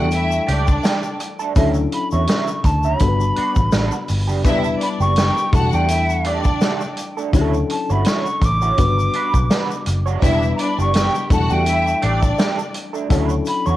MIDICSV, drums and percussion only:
0, 0, Header, 1, 2, 480
1, 0, Start_track
1, 0, Tempo, 722022
1, 1037, Time_signature, 4, 2, 24, 8
1, 9152, End_track
2, 0, Start_track
2, 0, Title_t, "Drums"
2, 74, Note_on_c, 9, 82, 81
2, 76, Note_on_c, 9, 42, 87
2, 141, Note_off_c, 9, 82, 0
2, 142, Note_off_c, 9, 42, 0
2, 210, Note_on_c, 9, 82, 61
2, 276, Note_off_c, 9, 82, 0
2, 320, Note_on_c, 9, 42, 70
2, 386, Note_off_c, 9, 42, 0
2, 446, Note_on_c, 9, 82, 48
2, 452, Note_on_c, 9, 36, 86
2, 513, Note_off_c, 9, 82, 0
2, 519, Note_off_c, 9, 36, 0
2, 556, Note_on_c, 9, 82, 72
2, 565, Note_on_c, 9, 38, 127
2, 565, Note_on_c, 9, 42, 92
2, 623, Note_off_c, 9, 82, 0
2, 631, Note_off_c, 9, 38, 0
2, 631, Note_off_c, 9, 42, 0
2, 685, Note_on_c, 9, 82, 48
2, 751, Note_off_c, 9, 82, 0
2, 798, Note_on_c, 9, 42, 80
2, 800, Note_on_c, 9, 82, 51
2, 864, Note_off_c, 9, 42, 0
2, 866, Note_off_c, 9, 82, 0
2, 928, Note_on_c, 9, 82, 46
2, 995, Note_off_c, 9, 82, 0
2, 1036, Note_on_c, 9, 42, 97
2, 1036, Note_on_c, 9, 82, 65
2, 1037, Note_on_c, 9, 36, 121
2, 1103, Note_off_c, 9, 42, 0
2, 1103, Note_off_c, 9, 82, 0
2, 1104, Note_off_c, 9, 36, 0
2, 1157, Note_on_c, 9, 82, 45
2, 1223, Note_off_c, 9, 82, 0
2, 1277, Note_on_c, 9, 42, 76
2, 1343, Note_off_c, 9, 42, 0
2, 1403, Note_on_c, 9, 82, 50
2, 1470, Note_off_c, 9, 82, 0
2, 1511, Note_on_c, 9, 42, 83
2, 1521, Note_on_c, 9, 82, 75
2, 1525, Note_on_c, 9, 38, 96
2, 1578, Note_off_c, 9, 42, 0
2, 1587, Note_off_c, 9, 82, 0
2, 1591, Note_off_c, 9, 38, 0
2, 1646, Note_on_c, 9, 82, 57
2, 1712, Note_off_c, 9, 82, 0
2, 1753, Note_on_c, 9, 42, 77
2, 1756, Note_on_c, 9, 36, 91
2, 1760, Note_on_c, 9, 82, 51
2, 1820, Note_off_c, 9, 42, 0
2, 1823, Note_off_c, 9, 36, 0
2, 1827, Note_off_c, 9, 82, 0
2, 1882, Note_on_c, 9, 82, 47
2, 1949, Note_off_c, 9, 82, 0
2, 1991, Note_on_c, 9, 42, 93
2, 1994, Note_on_c, 9, 82, 77
2, 2000, Note_on_c, 9, 36, 99
2, 2057, Note_off_c, 9, 42, 0
2, 2060, Note_off_c, 9, 82, 0
2, 2066, Note_off_c, 9, 36, 0
2, 2129, Note_on_c, 9, 82, 53
2, 2196, Note_off_c, 9, 82, 0
2, 2235, Note_on_c, 9, 42, 70
2, 2302, Note_off_c, 9, 42, 0
2, 2363, Note_on_c, 9, 82, 52
2, 2369, Note_on_c, 9, 36, 86
2, 2430, Note_off_c, 9, 82, 0
2, 2435, Note_off_c, 9, 36, 0
2, 2472, Note_on_c, 9, 82, 62
2, 2477, Note_on_c, 9, 38, 116
2, 2477, Note_on_c, 9, 42, 85
2, 2539, Note_off_c, 9, 82, 0
2, 2543, Note_off_c, 9, 38, 0
2, 2543, Note_off_c, 9, 42, 0
2, 2602, Note_on_c, 9, 82, 51
2, 2669, Note_off_c, 9, 82, 0
2, 2712, Note_on_c, 9, 46, 82
2, 2717, Note_on_c, 9, 82, 58
2, 2779, Note_off_c, 9, 46, 0
2, 2784, Note_off_c, 9, 82, 0
2, 2849, Note_on_c, 9, 82, 44
2, 2915, Note_off_c, 9, 82, 0
2, 2955, Note_on_c, 9, 42, 95
2, 2956, Note_on_c, 9, 36, 115
2, 2961, Note_on_c, 9, 82, 70
2, 3022, Note_off_c, 9, 36, 0
2, 3022, Note_off_c, 9, 42, 0
2, 3027, Note_off_c, 9, 82, 0
2, 3083, Note_on_c, 9, 82, 47
2, 3149, Note_off_c, 9, 82, 0
2, 3197, Note_on_c, 9, 42, 78
2, 3263, Note_off_c, 9, 42, 0
2, 3328, Note_on_c, 9, 82, 49
2, 3395, Note_off_c, 9, 82, 0
2, 3429, Note_on_c, 9, 42, 85
2, 3442, Note_on_c, 9, 38, 98
2, 3444, Note_on_c, 9, 82, 75
2, 3495, Note_off_c, 9, 42, 0
2, 3509, Note_off_c, 9, 38, 0
2, 3510, Note_off_c, 9, 82, 0
2, 3572, Note_on_c, 9, 82, 50
2, 3639, Note_off_c, 9, 82, 0
2, 3675, Note_on_c, 9, 42, 76
2, 3676, Note_on_c, 9, 36, 114
2, 3686, Note_on_c, 9, 82, 51
2, 3741, Note_off_c, 9, 42, 0
2, 3742, Note_off_c, 9, 36, 0
2, 3752, Note_off_c, 9, 82, 0
2, 3804, Note_on_c, 9, 82, 51
2, 3871, Note_off_c, 9, 82, 0
2, 3912, Note_on_c, 9, 42, 94
2, 3919, Note_on_c, 9, 82, 83
2, 3978, Note_off_c, 9, 42, 0
2, 3985, Note_off_c, 9, 82, 0
2, 4052, Note_on_c, 9, 82, 59
2, 4118, Note_off_c, 9, 82, 0
2, 4150, Note_on_c, 9, 42, 70
2, 4217, Note_off_c, 9, 42, 0
2, 4281, Note_on_c, 9, 82, 48
2, 4289, Note_on_c, 9, 36, 85
2, 4347, Note_off_c, 9, 82, 0
2, 4355, Note_off_c, 9, 36, 0
2, 4394, Note_on_c, 9, 82, 69
2, 4398, Note_on_c, 9, 38, 121
2, 4398, Note_on_c, 9, 42, 82
2, 4460, Note_off_c, 9, 82, 0
2, 4465, Note_off_c, 9, 38, 0
2, 4465, Note_off_c, 9, 42, 0
2, 4525, Note_on_c, 9, 82, 50
2, 4591, Note_off_c, 9, 82, 0
2, 4631, Note_on_c, 9, 42, 82
2, 4641, Note_on_c, 9, 82, 53
2, 4697, Note_off_c, 9, 42, 0
2, 4707, Note_off_c, 9, 82, 0
2, 4772, Note_on_c, 9, 82, 44
2, 4838, Note_off_c, 9, 82, 0
2, 4874, Note_on_c, 9, 42, 90
2, 4875, Note_on_c, 9, 36, 108
2, 4880, Note_on_c, 9, 82, 69
2, 4940, Note_off_c, 9, 42, 0
2, 4941, Note_off_c, 9, 36, 0
2, 4946, Note_off_c, 9, 82, 0
2, 5010, Note_on_c, 9, 82, 45
2, 5076, Note_off_c, 9, 82, 0
2, 5116, Note_on_c, 9, 42, 77
2, 5182, Note_off_c, 9, 42, 0
2, 5251, Note_on_c, 9, 82, 47
2, 5318, Note_off_c, 9, 82, 0
2, 5348, Note_on_c, 9, 42, 94
2, 5362, Note_on_c, 9, 38, 95
2, 5363, Note_on_c, 9, 82, 82
2, 5415, Note_off_c, 9, 42, 0
2, 5428, Note_off_c, 9, 38, 0
2, 5429, Note_off_c, 9, 82, 0
2, 5492, Note_on_c, 9, 82, 50
2, 5559, Note_off_c, 9, 82, 0
2, 5593, Note_on_c, 9, 42, 79
2, 5595, Note_on_c, 9, 36, 98
2, 5604, Note_on_c, 9, 82, 57
2, 5659, Note_off_c, 9, 42, 0
2, 5662, Note_off_c, 9, 36, 0
2, 5671, Note_off_c, 9, 82, 0
2, 5728, Note_on_c, 9, 82, 48
2, 5794, Note_off_c, 9, 82, 0
2, 5834, Note_on_c, 9, 42, 90
2, 5839, Note_on_c, 9, 82, 70
2, 5840, Note_on_c, 9, 36, 102
2, 5901, Note_off_c, 9, 42, 0
2, 5905, Note_off_c, 9, 82, 0
2, 5906, Note_off_c, 9, 36, 0
2, 5977, Note_on_c, 9, 82, 58
2, 6044, Note_off_c, 9, 82, 0
2, 6072, Note_on_c, 9, 42, 78
2, 6139, Note_off_c, 9, 42, 0
2, 6209, Note_on_c, 9, 36, 80
2, 6212, Note_on_c, 9, 82, 51
2, 6275, Note_off_c, 9, 36, 0
2, 6279, Note_off_c, 9, 82, 0
2, 6321, Note_on_c, 9, 38, 122
2, 6321, Note_on_c, 9, 42, 90
2, 6321, Note_on_c, 9, 82, 76
2, 6387, Note_off_c, 9, 38, 0
2, 6387, Note_off_c, 9, 42, 0
2, 6387, Note_off_c, 9, 82, 0
2, 6454, Note_on_c, 9, 82, 51
2, 6520, Note_off_c, 9, 82, 0
2, 6554, Note_on_c, 9, 42, 91
2, 6569, Note_on_c, 9, 82, 55
2, 6620, Note_off_c, 9, 42, 0
2, 6635, Note_off_c, 9, 82, 0
2, 6694, Note_on_c, 9, 82, 41
2, 6760, Note_off_c, 9, 82, 0
2, 6795, Note_on_c, 9, 36, 105
2, 6795, Note_on_c, 9, 42, 89
2, 6807, Note_on_c, 9, 82, 65
2, 6861, Note_off_c, 9, 42, 0
2, 6862, Note_off_c, 9, 36, 0
2, 6873, Note_off_c, 9, 82, 0
2, 6930, Note_on_c, 9, 82, 43
2, 6996, Note_off_c, 9, 82, 0
2, 7038, Note_on_c, 9, 42, 78
2, 7104, Note_off_c, 9, 42, 0
2, 7175, Note_on_c, 9, 82, 49
2, 7241, Note_off_c, 9, 82, 0
2, 7270, Note_on_c, 9, 42, 96
2, 7283, Note_on_c, 9, 38, 103
2, 7288, Note_on_c, 9, 82, 78
2, 7336, Note_off_c, 9, 42, 0
2, 7350, Note_off_c, 9, 38, 0
2, 7354, Note_off_c, 9, 82, 0
2, 7411, Note_on_c, 9, 82, 50
2, 7477, Note_off_c, 9, 82, 0
2, 7514, Note_on_c, 9, 36, 114
2, 7514, Note_on_c, 9, 42, 82
2, 7521, Note_on_c, 9, 82, 54
2, 7580, Note_off_c, 9, 36, 0
2, 7580, Note_off_c, 9, 42, 0
2, 7588, Note_off_c, 9, 82, 0
2, 7643, Note_on_c, 9, 82, 47
2, 7710, Note_off_c, 9, 82, 0
2, 7751, Note_on_c, 9, 42, 86
2, 7754, Note_on_c, 9, 82, 69
2, 7818, Note_off_c, 9, 42, 0
2, 7821, Note_off_c, 9, 82, 0
2, 7892, Note_on_c, 9, 82, 54
2, 7958, Note_off_c, 9, 82, 0
2, 7992, Note_on_c, 9, 42, 70
2, 8059, Note_off_c, 9, 42, 0
2, 8127, Note_on_c, 9, 82, 50
2, 8128, Note_on_c, 9, 36, 85
2, 8193, Note_off_c, 9, 82, 0
2, 8194, Note_off_c, 9, 36, 0
2, 8233, Note_on_c, 9, 82, 62
2, 8240, Note_on_c, 9, 38, 120
2, 8240, Note_on_c, 9, 42, 97
2, 8300, Note_off_c, 9, 82, 0
2, 8306, Note_off_c, 9, 38, 0
2, 8306, Note_off_c, 9, 42, 0
2, 8367, Note_on_c, 9, 82, 47
2, 8434, Note_off_c, 9, 82, 0
2, 8470, Note_on_c, 9, 42, 82
2, 8479, Note_on_c, 9, 82, 58
2, 8537, Note_off_c, 9, 42, 0
2, 8545, Note_off_c, 9, 82, 0
2, 8605, Note_on_c, 9, 82, 45
2, 8672, Note_off_c, 9, 82, 0
2, 8709, Note_on_c, 9, 42, 99
2, 8711, Note_on_c, 9, 36, 107
2, 8717, Note_on_c, 9, 82, 66
2, 8776, Note_off_c, 9, 42, 0
2, 8778, Note_off_c, 9, 36, 0
2, 8783, Note_off_c, 9, 82, 0
2, 8837, Note_on_c, 9, 82, 47
2, 8904, Note_off_c, 9, 82, 0
2, 8946, Note_on_c, 9, 82, 62
2, 8953, Note_on_c, 9, 42, 72
2, 9012, Note_off_c, 9, 82, 0
2, 9019, Note_off_c, 9, 42, 0
2, 9082, Note_on_c, 9, 82, 53
2, 9148, Note_off_c, 9, 82, 0
2, 9152, End_track
0, 0, End_of_file